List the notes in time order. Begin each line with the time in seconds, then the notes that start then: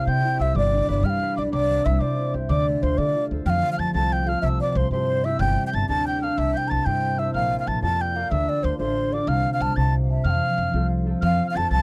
Already playing: C3 G3 A3 D4 E4 G4 F5
0.07 C3 C5 G5 G6
0.25 E4
0.40 C2 G4 E5 E6
0.55 G1 G3 D5 D6
0.73 D4
0.89 G1 B4 D5
1.03 G2 G3 G5 F6
1.10 F5
1.23 B4
1.37 B1 D4 D5 D6
1.52 C2 C3 D5 D6
1.70 G3
1.84 C2 E4 E5 E6
1.99 C3 C5 D5 D6
2.19 E4
2.34 C2 G4
2.49 D2 D3 D5 D6
2.67 A3
2.82 D2 F4 C5 C6
2.97 D3 A4 D5 D6
3.16 F4
3.31 D2 A4
3.46 F2 F3 G5 F6
3.50 F5
3.71 F5 F6
3.79 F2 A5 A6
3.94 C2 C4 F4 A4 A5 A6
4.13 G5 G6
4.27 C4 F4 A4 F5 F6
4.42 C2 C3 E5 E6
4.61 D5 D6
4.72 C2 D5
4.77 C5 C6
4.91 G2 C4 E4 G4 C5 C6
5.24 C4 E4 G4 E5 E6
5.39 G1 G3 G5 G6
5.66 G5 G6
5.73 G1 A5 A6
5.88 D2 D4 G4 A#4 A5 A6
6.06 G5 G6
6.22 D4 G4 A#4 F5 F6
6.37 C2 C3 E5 E6
6.54 G5 G6
6.68 C2 A5 A#5 A6
6.85 G2 E4 G4 C5 G5 G6
7.18 E4 G4 C5 E5 E6
7.34 A#1 A#3 F5 F6
7.60 F5 F6
7.67 A#1 A5 A6
7.82 F2 F4 A#4 D5 A5 A6
8.01 G5 G6
8.15 F4 A#4 D5 F5
8.31 D2 D3 E5 E6
8.49 D5
8.63 D2 C5 C6
8.78 A1 D4 F4 A4 C5 C6
9.12 D4 F4 A4 D5 D6
9.27 C2 C3 F5 F6
9.53 F5 F6
9.60 C2 A5
9.76 C2 C3 A5 A6
10.10 E5
10.24 F2 F3 G5 F6
10.30 F5
10.58 F2
10.73 C2 C4 F4 A4
11.06 C4 F4 A4
11.21 F2 F3 F5 F6
11.47 F5 F6
11.54 F2 C4 F4 A4 A5 A6
11.70 C2 A5 A6